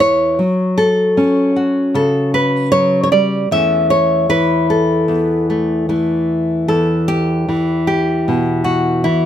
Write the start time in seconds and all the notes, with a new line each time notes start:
Already playing: E2 E3 G4
0.00 C#5
0.39 F#3
0.78 A4
1.17 C#4
1.56 F#4
1.94 C#3 A4
2.34 B4
2.72 F#3 C#5
3.03 C#5
3.12 G3 D5
3.51 E2 E3 A3 C#4 E5
3.90 C#5
4.29 E3 B4
4.70 A4
5.08 E2
5.50 A3
5.89 E3 A3
6.68 E2 A4
7.08 G4
7.49 E3
7.87 G4
8.28 B2
8.64 F#4
9.04 E3 E4